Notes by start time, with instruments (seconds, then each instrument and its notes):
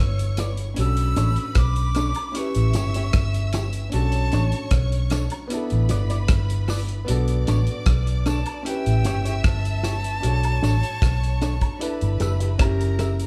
Already playing: grand piano B3 D4 E4 A4, violin section C#5 C#6, flute E6
0.00 fingered electric bass G1
0.19 closed hi-hat
0.37 clean electric guitar E4 B4 D5, closed hi-hat, tambourine
0.57 closed hi-hat
0.74 fingered electric bass B1, grand piano C#4 D4, violin section B4 B5, closed hi-hat
0.79 grand piano F#4 A4, flute E6
0.97 closed hi-hat
1.16 fingered electric bass A1, clean electric guitar D4 A4 C#5, closed hi-hat, tambourine
1.36 closed hi-hat
1.55 fingered electric bass B1, flute D6, kick, cross-stick, closed hi-hat
1.76 closed hi-hat
1.95 clean electric guitar D4 A4 C#5, closed hi-hat, tambourine
2.15 muted clean electric guitar stroke, closed hi-hat, high woodblock
2.32 grand piano C#4 E4, violin section E5 E6, closed hi-hat
2.36 grand piano G4 B4, flute C#6
2.55 fingered electric bass A1, closed hi-hat
2.73 fingered electric bass G1, clean electric guitar E4 G4 C#5, closed hi-hat, tambourine
2.94 clean electric guitar E4 G4 C#5, closed hi-hat
3.13 fingered electric bass G1, kick, cross-stick, closed hi-hat
3.34 closed hi-hat
3.53 clean electric guitar E4 G4 C#5, closed hi-hat, tambourine
3.73 closed hi-hat
3.89 grand piano C#4 D4 F#4, flute A5, closed hi-hat
3.94 fingered electric bass B1, grand piano A4, violin section C#5 C#6
4.12 closed hi-hat
4.32 fingered electric bass A1, clean electric guitar D4 A4 C#5, closed hi-hat, tambourine
4.52 closed hi-hat
4.71 fingered electric bass B1, kick, cross-stick, closed hi-hat
4.92 closed hi-hat
5.10 clean electric guitar D4 A4 C#5, cross-stick, closed hi-hat, tambourine
5.30 muted clean electric guitar stroke, closed hi-hat, high woodblock
5.48 grand piano B3 D4 E4, violin section B4 B5, closed hi-hat
5.54 grand piano A4
5.70 fingered electric bass A1, closed hi-hat
5.89 fingered electric bass G1, clean electric guitar E4 B4 D5, closed hi-hat, tambourine
6.10 clean electric guitar E4 B4 D5, closed hi-hat
6.28 fingered electric bass G1, kick, cross-stick, closed hi-hat
6.50 closed hi-hat
6.68 clean electric guitar E4 B4 D5, open hi-hat, tambourine
6.89 closed hi-hat
7.05 grand piano B3 D4 F#4, violin section D5 D6, closed hi-hat
7.09 fingered electric bass B1, grand piano A4
7.28 closed hi-hat
7.47 fingered electric bass A1, clean electric guitar D4 A4 C#5, closed hi-hat, tambourine
7.67 closed hi-hat
7.86 fingered electric bass B1, kick, cross-stick, closed hi-hat
8.07 closed hi-hat
8.26 clean electric guitar D4 A4 C#5, flute A5, closed hi-hat, tambourine
8.46 muted clean electric guitar stroke, closed hi-hat, high woodblock
8.63 grand piano C#4 E4, violin section E5 E6, flute G5, closed hi-hat
8.67 grand piano G4 B4
8.86 fingered electric bass A1, closed hi-hat
9.05 fingered electric bass G1, clean electric guitar E4 G4 C#5, closed hi-hat, tambourine
9.25 clean electric guitar E4 G4 C#5, closed hi-hat
9.44 fingered electric bass G1, flute A5, kick, cross-stick, closed hi-hat
9.65 closed hi-hat
9.83 clean electric guitar E4 G4 C#5, closed hi-hat, tambourine
10.04 closed hi-hat
10.20 grand piano D4 F#4 A4, violin section C#5 C#6, closed hi-hat
10.24 fingered electric bass B1, grand piano C#5
10.43 closed hi-hat, high woodblock
10.62 fingered electric bass A1, clean electric guitar D4 A4 C#5, closed hi-hat, tambourine
10.83 closed hi-hat
11.02 fingered electric bass B1, kick, cross-stick, closed hi-hat
11.24 closed hi-hat
11.42 clean electric guitar D4 A4 C#5, closed hi-hat, tambourine
11.61 muted clean electric guitar stroke, kick, closed hi-hat, high woodblock
11.79 grand piano D4 E4 A4 B4, violin section B4 B5, closed hi-hat
12.01 fingered electric bass G1, closed hi-hat
12.20 fingered electric bass F#1, clean electric guitar G4 B4 E5, closed hi-hat, tambourine
12.40 clean electric guitar G4 B4 E5, closed hi-hat
12.58 fingered electric bass F#1, grand piano C#4 E4 G4 A#4, violin section A#4 A#5, kick, cross-stick, closed hi-hat, high woodblock
12.81 closed hi-hat
12.99 clean electric guitar G4 A#4 E5, closed hi-hat, tambourine
13.20 closed hi-hat